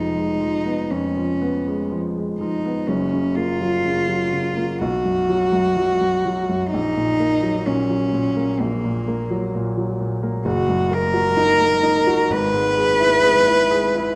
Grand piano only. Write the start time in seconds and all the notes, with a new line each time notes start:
Already playing: F1 F2 F3 G#3 B3
0.15 G#3
0.41 F3
0.66 B3
0.91 F2
1.17 F3
1.42 B3
1.67 G#3
1.92 F3
2.16 G#3
2.41 F3
2.66 B3
2.88 F#1 F#2
3.13 C#3
3.37 A#3
3.60 F#3
3.85 C#3
4.08 F#3
4.33 C#3
4.57 A#3
4.81 B1
5.05 F#2
5.29 F#3
5.53 F#2
5.77 F#3
6.01 F#2
6.25 F#3
6.49 F#2
6.74 A#1
6.97 A#2
7.20 A#3
7.43 F#3
7.66 A#2
7.90 F#3
8.13 A#2
8.37 A#3
8.60 A#1
8.84 A#2
9.08 A#3
9.31 F#3
9.55 A#2
9.77 F#3
10.01 A#2
10.23 A#3
10.45 F#1
10.69 F#2
10.91 A#3
11.14 F#4
11.37 D#4
11.60 A#3
11.83 D#4
12.07 F#4
12.30 G#1
12.53 G#2
12.77 G#3
13.00 E4
13.23 G#4
13.48 E4
13.71 G#4
13.96 E4